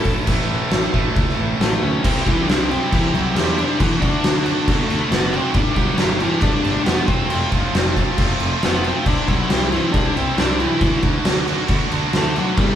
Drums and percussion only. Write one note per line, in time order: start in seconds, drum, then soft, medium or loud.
0.04 kick medium
0.04 open hi-hat medium
0.27 kick loud
0.27 crash loud
0.27 crash medium
0.71 snare loud
0.71 crash medium
0.94 kick medium
1.16 kick loud
1.16 crash medium
1.29 snare soft
1.61 snare loud
1.61 crash medium
2.04 kick loud
2.04 crash loud
2.04 crash medium
2.27 kick medium
2.27 crash medium
2.49 snare loud
2.49 crash medium
2.71 snare soft
2.71 crash medium
2.92 kick loud
2.92 crash medium
3.15 crash medium
3.36 snare loud
3.36 crash medium
3.58 crash medium
3.80 kick loud
3.80 crash medium
4.02 kick medium
4.02 crash medium
4.24 snare loud
4.24 crash medium
4.46 crash medium
4.68 kick loud
4.68 crash loud
4.90 snare soft
4.90 crash medium
5.12 snare loud
5.12 crash medium
5.33 crash medium
5.54 kick loud
5.54 crash medium
5.76 kick medium
5.76 crash medium
5.98 snare loud
5.98 crash medium
6.20 crash medium
6.41 kick loud
6.41 crash medium
6.65 snare soft
6.65 crash medium
6.86 snare loud
6.86 crash medium
7.08 kick loud
7.08 crash medium
7.30 crash medium
7.52 kick medium
7.52 crash medium
7.75 snare loud
7.75 crash medium
7.97 kick medium
7.97 crash medium
8.18 kick loud
8.18 crash medium
8.40 crash medium
8.63 snare loud
8.63 crash medium
8.84 crash medium
9.06 kick loud
9.06 crash medium
9.28 kick medium
9.28 crash medium
9.50 snare loud
9.50 crash medium
9.72 snare soft
9.72 crash medium
9.94 kick loud
9.94 crash medium
10.17 crash medium
10.38 snare loud
10.38 crash medium
10.60 crash medium
10.81 kick loud
10.81 crash medium
11.03 kick medium
11.03 crash medium
11.25 snare loud
11.25 crash medium
11.48 crash medium
11.68 kick loud
11.68 crash medium
11.92 crash medium
12.13 snare loud
12.13 crash medium
12.36 crash medium
12.57 kick loud
12.57 crash medium